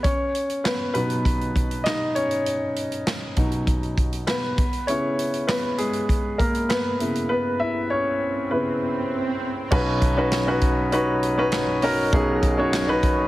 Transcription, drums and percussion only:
0.04 kick, closed hi-hat
0.35 closed hi-hat
0.50 closed hi-hat
0.65 snare, clap, closed hi-hat
0.95 closed hi-hat
1.10 closed hi-hat
1.25 kick, closed hi-hat
1.41 closed hi-hat
1.56 kick, closed hi-hat
1.71 closed hi-hat
1.86 snare, clap, closed hi-hat
2.16 closed hi-hat
2.31 closed hi-hat
2.46 closed hi-hat
2.76 closed hi-hat
2.92 closed hi-hat
3.07 snare, clap, closed hi-hat
3.37 kick, closed hi-hat
3.52 closed hi-hat
3.67 kick, closed hi-hat
3.83 closed hi-hat
3.98 kick, closed hi-hat
4.13 closed hi-hat
4.27 snare, clap, closed hi-hat
4.58 kick, closed hi-hat
4.73 closed hi-hat
4.88 closed hi-hat
5.19 closed hi-hat
5.34 closed hi-hat
5.48 snare, clap, closed hi-hat
5.78 closed hi-hat
5.93 closed hi-hat
6.09 kick, closed hi-hat
6.39 kick, closed hi-hat
6.55 closed hi-hat
6.70 snare, clap, closed hi-hat
7.00 closed hi-hat
7.15 closed hi-hat
9.72 kick, crash
10.02 kick, closed hi-hat
10.32 snare, clap, closed hi-hat
10.61 kick, closed hi-hat
10.92 closed hi-hat
11.23 closed hi-hat
11.52 snare, clap, closed hi-hat
11.82 open hi-hat
12.13 kick, closed hi-hat
12.43 kick, closed hi-hat
12.73 snare, clap, closed hi-hat
13.03 kick, closed hi-hat

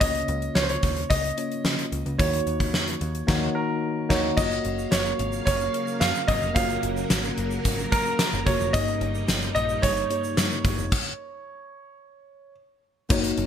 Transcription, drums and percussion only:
0.01 kick, closed hi-hat
0.15 closed hi-hat
0.28 closed hi-hat
0.42 closed hi-hat
0.55 snare
0.69 closed hi-hat
0.83 kick, closed hi-hat
0.96 closed hi-hat
1.10 kick, closed hi-hat
1.24 closed hi-hat
1.38 closed hi-hat
1.52 closed hi-hat
1.65 snare
1.79 closed hi-hat
1.92 closed hi-hat
2.06 closed hi-hat
2.19 kick, closed hi-hat
2.33 closed hi-hat
2.47 closed hi-hat
2.60 kick, closed hi-hat
2.74 snare
2.88 closed hi-hat
3.01 closed hi-hat
3.15 closed hi-hat
3.28 kick, snare, crash
4.10 kick, snare, crash
4.37 kick, crash, shaker
4.51 shaker
4.65 closed hi-hat
4.79 shaker
4.92 snare, closed hi-hat, shaker
5.05 shaker
5.19 closed hi-hat
5.32 shaker
5.47 kick, closed hi-hat, shaker
5.60 shaker
5.74 closed hi-hat
5.87 shaker
6.01 snare, closed hi-hat, shaker
6.15 shaker
6.28 kick, closed hi-hat
6.42 shaker
6.56 kick, closed hi-hat, shaker
6.70 shaker
6.83 closed hi-hat
6.97 shaker
7.10 snare, closed hi-hat, shaker
7.24 shaker
7.38 closed hi-hat
7.51 shaker
7.65 kick, closed hi-hat, shaker
7.78 shaker
7.92 kick, closed hi-hat
8.06 shaker
8.19 snare, closed hi-hat, shaker
8.33 shaker
8.47 kick, closed hi-hat
8.60 shaker
8.74 kick, closed hi-hat, shaker
8.87 shaker
9.01 closed hi-hat
9.15 shaker
9.28 snare, closed hi-hat, shaker
9.42 shaker
9.56 closed hi-hat
9.69 shaker
9.83 kick, closed hi-hat, shaker
9.97 shaker
10.10 closed hi-hat
10.24 shaker
10.37 snare, closed hi-hat, shaker
10.51 shaker
10.65 kick, closed hi-hat
10.79 shaker
10.92 kick, crash
13.10 kick, crash, shaker
13.24 closed hi-hat, shaker
13.37 closed hi-hat

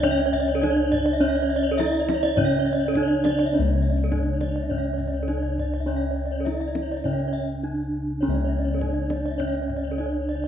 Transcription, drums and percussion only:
0.03 kendang low
0.19 kendang slap
0.34 kendang low
0.49 kendang slap
0.63 kendang high
0.92 kendang low
1.36 kendang slap
1.79 kendang high
1.95 kendang slap
2.09 kendang high
2.23 kendang slap
2.37 kendang low
2.52 kendang slap
2.95 kendang low
3.11 kendang slap
3.25 kendang high
3.39 kendang slap
3.98 kendang slap
4.12 kendang high, kendang low
4.26 kendang slap
4.41 kendang high
4.70 kendang low
4.85 kendang slap
4.99 kendang low
5.14 kendang slap
5.28 kendang high
5.58 kendang low
6.31 kendang slap
6.46 kendang high
6.61 kendang slap
6.75 kendang high
7.04 kendang low
7.20 kendang slap
8.22 kendang high
8.67 kendang slap
8.81 kendang high, kendang low
8.96 kendang slap
9.10 kendang high
9.40 kendang low
9.55 kendang slap
9.70 kendang low
9.85 kendang slap

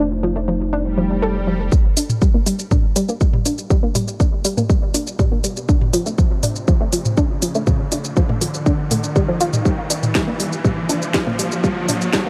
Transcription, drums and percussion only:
1.72 kick, shaker
1.97 open hi-hat, shaker
2.10 mid tom, shaker
2.22 kick, shaker
2.46 open hi-hat, shaker
2.59 shaker
2.71 kick, mid tom, shaker
2.96 open hi-hat, shaker
3.09 shaker
3.21 kick, shaker
3.33 mid tom
3.45 open hi-hat, shaker
3.58 shaker
3.70 kick, shaker
3.95 mid tom, open hi-hat, shaker
4.08 shaker
4.20 kick, shaker
4.45 open hi-hat, shaker
4.57 mid tom, shaker
4.70 kick, shaker
4.94 open hi-hat, shaker
5.07 shaker
5.19 kick, mid tom, shaker
5.44 open hi-hat, shaker
5.57 shaker
5.69 kick, shaker
5.81 mid tom
5.94 open hi-hat, shaker
6.06 shaker
6.18 kick, shaker
6.43 mid tom, open hi-hat, shaker
6.56 shaker
6.68 kick, shaker
6.93 open hi-hat, shaker
7.05 mid tom, shaker
7.17 kick, shaker
7.42 open hi-hat, shaker
7.55 shaker
7.67 kick, mid tom, shaker
7.92 open hi-hat, shaker
8.04 shaker
8.17 kick, shaker
8.29 mid tom
8.41 open hi-hat, shaker
8.54 shaker
8.66 kick, shaker
8.91 mid tom, open hi-hat, shaker
9.04 shaker
9.16 kick, shaker
9.41 open hi-hat, shaker
9.53 mid tom, shaker
9.65 kick, shaker
9.90 open hi-hat, shaker
10.03 mid tom, shaker
10.15 kick, snare, shaker
10.40 open hi-hat, shaker
10.53 shaker
10.65 kick, mid tom, shaker
10.89 open hi-hat, shaker
11.02 shaker
11.14 kick, snare, shaker
11.27 mid tom
11.39 open hi-hat, shaker
11.52 shaker
11.64 kick, shaker
11.89 mid tom, open hi-hat, shaker
12.01 shaker
12.13 kick, snare, shaker

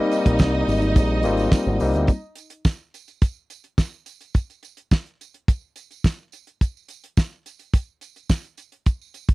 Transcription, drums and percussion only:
0.12 closed hi-hat, tambourine
0.26 kick, closed hi-hat
0.39 kick, snare, tambourine
0.68 open hi-hat, tambourine
0.82 closed hi-hat, tambourine
0.96 kick, closed hi-hat, tambourine
1.23 closed hi-hat, tambourine
1.37 closed hi-hat, tambourine
1.52 kick, snare, tambourine
1.80 open hi-hat, tambourine
1.94 closed hi-hat, tambourine
2.07 kick, closed hi-hat, tambourine
2.35 closed hi-hat, tambourine
2.50 closed hi-hat
2.65 kick, snare, tambourine
2.94 closed hi-hat, tambourine
3.08 closed hi-hat, tambourine
3.22 kick, closed hi-hat, tambourine
3.50 closed hi-hat, tambourine
3.64 closed hi-hat
3.78 kick, snare, tambourine
4.06 closed hi-hat, tambourine
4.21 closed hi-hat, tambourine
4.34 kick, closed hi-hat, tambourine
4.50 closed hi-hat, tambourine
4.63 closed hi-hat, tambourine
4.77 closed hi-hat
4.91 kick, snare, tambourine
5.06 closed hi-hat
5.21 closed hi-hat, tambourine
5.34 closed hi-hat
5.48 kick, closed hi-hat, tambourine
5.76 closed hi-hat, tambourine
5.91 closed hi-hat, tambourine
6.04 kick, snare, tambourine
6.32 closed hi-hat, tambourine
6.47 closed hi-hat
6.61 kick, closed hi-hat, tambourine
6.77 tambourine
6.88 closed hi-hat, tambourine
7.04 closed hi-hat
7.17 kick, snare, tambourine
7.46 closed hi-hat, tambourine
7.59 closed hi-hat, tambourine
7.73 kick, closed hi-hat, tambourine
8.01 closed hi-hat, tambourine
8.16 closed hi-hat, tambourine
8.29 kick, snare, tambourine
8.44 closed hi-hat
8.57 closed hi-hat, tambourine
8.72 closed hi-hat
8.86 kick, closed hi-hat, tambourine
9.02 tambourine
9.14 closed hi-hat, tambourine
9.28 kick, closed hi-hat

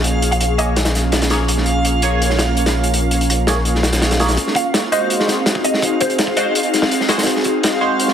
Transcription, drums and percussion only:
0.04 closed hi-hat
0.22 closed hi-hat
0.32 closed hi-hat
0.41 closed hi-hat
0.59 closed hi-hat
0.76 snare, closed hi-hat
0.85 snare, closed hi-hat
0.95 snare, closed hi-hat
1.12 snare, closed hi-hat
1.22 snare, closed hi-hat
1.30 snare, closed hi-hat
1.48 closed hi-hat
1.57 snare
1.66 closed hi-hat
1.85 closed hi-hat
2.02 closed hi-hat
2.22 closed hi-hat
2.30 snare
2.39 snare, closed hi-hat
2.57 closed hi-hat
2.66 snare, closed hi-hat
2.84 closed hi-hat
2.94 closed hi-hat
3.11 closed hi-hat
3.21 closed hi-hat
3.30 closed hi-hat
3.47 snare, closed hi-hat
3.65 closed hi-hat
3.75 snare
3.83 snare, closed hi-hat
3.93 snare, closed hi-hat
4.02 snare, closed hi-hat
4.11 snare, closed hi-hat
4.19 snare, closed hi-hat
4.28 snare, closed hi-hat
4.37 kick, closed hi-hat
4.47 snare
4.55 kick, closed hi-hat
4.74 snare, closed hi-hat
4.92 closed hi-hat
5.10 closed hi-hat
5.20 snare
5.28 snare, closed hi-hat
5.46 snare, closed hi-hat
5.55 kick
5.64 closed hi-hat
5.74 snare
5.82 kick, closed hi-hat
6.00 kick, closed hi-hat
6.10 closed hi-hat
6.18 snare, closed hi-hat
6.27 kick
6.37 closed hi-hat
6.55 closed hi-hat
6.63 closed hi-hat
6.74 snare, closed hi-hat
6.82 snare
6.91 closed hi-hat
7.01 snare
7.09 snare, closed hi-hat
7.18 snare, closed hi-hat
7.23 kick, snare, closed hi-hat
7.27 closed hi-hat
7.36 snare
7.44 kick, closed hi-hat
7.63 snare, closed hi-hat
8.00 closed hi-hat
8.08 snare

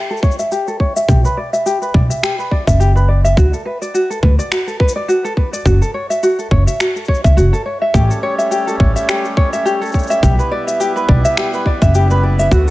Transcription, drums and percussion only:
0.11 shaker
0.17 shaker
0.23 kick, shaker
0.31 shaker
0.39 shaker
0.52 shaker
0.68 shaker
0.80 kick
0.96 shaker
1.09 kick, shaker
1.25 shaker
1.54 shaker
1.66 shaker
1.82 shaker
1.94 kick
2.11 shaker
2.23 finger snap, shaker
2.40 shaker
2.51 kick
2.67 kick, shaker
2.81 shaker
2.97 shaker
3.25 shaker
3.37 kick, shaker
3.54 shaker
3.82 shaker
3.95 shaker
4.11 shaker
4.23 kick
4.39 shaker
4.52 finger snap, shaker
4.68 shaker
4.80 kick
4.89 shaker
5.09 shaker
5.25 shaker
5.37 kick
5.54 shaker
5.66 kick, shaker
5.82 shaker
6.11 shaker
6.23 shaker
6.39 shaker
6.51 kick
6.68 shaker
6.80 finger snap, shaker
6.96 shaker
7.05 kick, shaker
7.14 shaker
7.24 kick, shaker
7.38 shaker
7.54 shaker
7.94 kick, shaker
8.11 shaker
8.39 shaker
8.52 shaker
8.68 shaker
8.80 kick
8.96 shaker
9.09 finger snap, shaker
9.25 shaker
9.37 kick
9.53 shaker
9.66 shaker
9.82 shaker
9.85 shaker
9.89 shaker
9.92 kick, shaker
9.95 shaker
9.99 shaker
10.03 shaker
10.07 shaker
10.11 shaker
10.23 kick, shaker
10.39 shaker
10.68 shaker
10.81 shaker
10.97 shaker
11.09 kick
11.25 shaker
11.37 finger snap, shaker
11.54 shaker
11.66 kick
11.82 kick, shaker
11.95 shaker
12.11 shaker
12.39 shaker
12.51 kick, shaker

